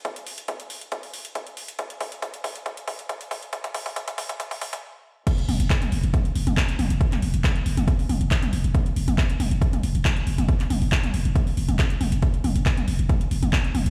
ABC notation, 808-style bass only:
X:1
M:4/4
L:1/16
Q:1/4=138
K:Cphr
V:1 name="808-style bass" clef=bass
z16 | z16 | z16 | z2 F,,, F,,, z2 F,,, F,,, z2 F,,, F,,, z2 F,,, F,,, |
z2 F,,, F,,, z2 F,,, F,,, z2 F,,, F,,, z2 F,,, F,,, | z2 F,,, F,,, z2 F,,, F,,, z2 F,,, F,,, z2 F,,, F,,, | z2 F,,, F,,, z2 F,,, F,,, z2 F,,, F,,, z2 F,,, F,,, | z2 F,,, F,,, z2 F,,, F,,, z2 F,,, F,,, z2 F,,, F,,, |]